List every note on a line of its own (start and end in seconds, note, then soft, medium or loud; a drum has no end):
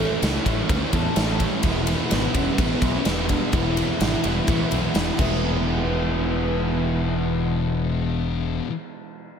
0.00 0.21 A2 medium
0.00 0.21 A2 loud
0.00 0.20 E3 loud
0.00 0.24 E3 medium
0.00 0.21 A3 medium
0.00 0.24 A3 medium
0.00 0.45 A3 loud
0.00 0.21 C#4 medium
0.00 0.22 C#4 medium
0.00 0.45 C#4 loud
0.00 0.23 E4 medium
0.00 0.45 E4 loud
0.00 0.23 A4 medium
0.00 0.24 A4 loud
0.20 0.37 C#2 medium
0.20 0.69 A2 medium
0.20 0.68 E3 medium
0.20 0.46 A3 medium
0.20 0.44 C#4 medium
0.20 0.43 E4 medium
0.20 snare loud
0.20 ride loud
0.25 0.48 E3 medium
0.25 0.44 A3 medium
0.44 0.60 A1 medium
0.44 1.63 E3 medium
0.44 0.71 A3 medium
0.44 0.68 A3 medium
0.44 0.69 C#4 medium
0.44 0.71 E4 medium
0.44 kick medium
0.44 ride medium
0.48 1.64 A2 medium
0.48 0.70 E3 medium
0.68 0.84 D2 medium
0.68 1.16 A2 loud
0.68 1.13 E3 loud
0.68 0.96 E3 loud
0.68 0.93 A3 loud
0.68 0.91 C#4 loud
0.68 0.91 E4 loud
0.68 kick loud
0.68 ride loud
0.72 0.92 A3 loud
0.91 1.07 E2 loud
0.91 1.19 A3 medium
0.91 1.14 A3 medium
0.91 1.14 C#4 medium
0.91 1.16 E4 medium
0.91 1.65 A4 medium
0.91 kick medium
0.91 ride medium
0.96 1.19 E3 medium
1.14 1.45 A1 loud
1.14 1.63 A2 medium
1.14 1.62 E3 medium
1.14 1.40 A3 medium
1.14 1.38 C#4 medium
1.14 1.38 E4 medium
1.14 snare loud
1.14 ride loud
1.19 1.43 E3 medium
1.19 1.39 A3 medium
1.38 1.63 A3 medium
1.38 1.62 C#4 medium
1.38 1.65 E4 medium
1.38 kick medium
1.38 ride medium
1.43 1.66 E3 medium
1.63 1.92 E1 loud
1.63 2.12 E2 loud
1.63 1.88 B2 loud
1.63 2.10 E3 loud
1.63 1.86 E3 loud
1.63 1.88 G#3 loud
1.63 1.87 B3 loud
1.63 1.85 E4 loud
1.63 kick loud
1.63 ride loud
1.86 2.12 B2 medium
1.86 2.14 E3 medium
1.86 2.11 G#3 medium
1.86 2.12 B3 medium
1.86 2.13 E4 medium
1.86 ride medium
2.10 2.26 G#1 loud
2.10 2.59 E2 medium
2.10 2.36 B2 medium
2.10 2.56 E3 medium
2.10 2.36 G#3 medium
2.10 2.36 B3 medium
2.10 2.34 B3 medium
2.10 2.33 E4 medium
2.10 snare loud
2.10 ride loud
2.14 2.34 E3 medium
2.33 2.49 E1 medium
2.33 2.61 E3 medium
2.33 2.58 G#3 medium
2.33 2.58 B3 medium
2.33 2.62 C#4 medium
2.33 2.60 E4 medium
2.33 kick medium
2.33 ride medium
2.37 2.59 B2 medium
2.37 3.52 E3 medium
2.56 2.72 A1 loud
2.56 3.06 E2 loud
2.56 3.05 E3 loud
2.56 2.83 G#3 loud
2.56 2.82 B3 loud
2.56 2.97 B3 loud
2.56 2.80 E4 loud
2.56 kick loud
2.56 ride loud
2.61 2.85 B2 loud
2.61 2.82 E3 loud
2.81 2.96 B1 loud
2.81 3.08 E3 medium
2.81 3.06 G#3 medium
2.81 3.07 B3 medium
2.81 3.08 E4 medium
2.81 4.01 G#4 medium
2.81 kick medium
2.81 ride medium
2.86 3.07 B2 medium
2.96 3.08 C#4 medium
3.05 3.35 E1 loud
3.05 3.53 E2 medium
3.05 3.31 B2 medium
3.05 3.52 E3 medium
3.05 3.29 E3 medium
3.05 3.32 G#3 medium
3.05 3.30 B3 loud
3.05 3.30 B3 medium
3.05 3.28 E4 medium
3.05 snare loud
3.05 ride loud
3.28 3.54 E3 medium
3.28 3.53 G#3 medium
3.28 3.54 B3 medium
3.28 3.55 D4 loud
3.28 3.54 E4 medium
3.28 kick medium
3.28 ride medium
3.32 3.53 B2 medium
3.53 3.82 E1 loud
3.53 3.98 E2 loud
3.53 3.77 B2 loud
3.53 3.99 E3 loud
3.53 3.75 E3 loud
3.53 3.79 G#3 loud
3.53 3.77 B3 loud
3.53 5.20 E4 loud
3.53 3.75 E4 loud
3.53 kick loud
3.53 ride loud
3.76 3.99 B2 medium
3.76 4.01 E3 medium
3.76 4.01 G#3 medium
3.76 4.01 B3 medium
3.76 4.03 E4 medium
3.76 ride medium
3.99 4.15 G#1 loud
3.99 4.45 E2 medium
3.99 4.25 B2 medium
3.99 4.45 E3 medium
3.99 4.22 E3 medium
3.99 4.26 G#3 medium
3.99 4.24 B3 medium
3.99 snare loud
3.99 ride loud
4.04 4.22 E4 medium
4.23 4.39 E1 loud
4.23 4.47 B2 medium
4.23 4.48 E3 medium
4.23 5.18 E3 medium
4.23 4.48 B3 medium
4.23 4.48 E4 medium
4.23 ride medium
4.27 4.47 G#3 medium
4.46 4.63 A1 medium
4.46 4.91 E2 medium
4.46 4.72 B2 loud
4.46 4.92 E3 medium
4.46 4.68 E3 loud
4.46 4.73 G#3 loud
4.46 4.72 B3 loud
4.46 4.70 E4 loud
4.46 kick loud
4.46 ride loud
4.70 4.86 B1 loud
4.70 4.92 B2 medium
4.70 4.94 E3 medium
4.70 4.95 B3 medium
4.70 4.96 E4 medium
4.70 5.19 G#4 medium
4.70 ride medium
4.75 4.94 G#3 medium
4.92 5.10 E1 medium
4.92 5.15 E2 medium
4.92 5.17 B2 medium
4.92 5.15 E3 medium
4.92 5.19 E3 medium
4.92 5.17 G#3 medium
4.92 snare loud
4.92 ride medium
4.97 5.18 B3 medium
4.97 5.20 E4 medium
5.16 8.59 E1 medium
5.16 8.67 E2 loud
5.16 8.68 B2 loud
5.16 8.66 E3 loud
5.16 8.68 G#3 loud
5.16 8.69 B3 medium
5.16 8.60 B3 loud
5.16 kick loud
5.16 crash medium
5.21 8.71 E3 loud
5.21 8.71 E4 loud
5.21 8.71 G#4 loud
5.21 8.72 G#4 loud